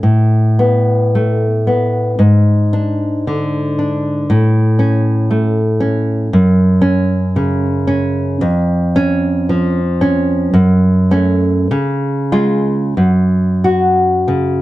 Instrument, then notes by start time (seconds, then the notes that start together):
nylon-string guitar
0.03 A2
0.59 B3
1.15 A3
1.67 B3
2.19 G#2
2.73 D4
3.27 D3
3.79 D4
4.30 A2
4.79 C#4
5.31 A3
5.80 C#4
6.33 F#2
6.82 C#4
7.36 C#3
7.87 C#4
8.41 F2
8.96 C#4
9.49 F3
10.01 C#4
10.53 F#2
11.11 A3 C#4
11.71 C#3
12.32 G#3 F4
12.97 F#2
13.64 F#4
14.28 C#3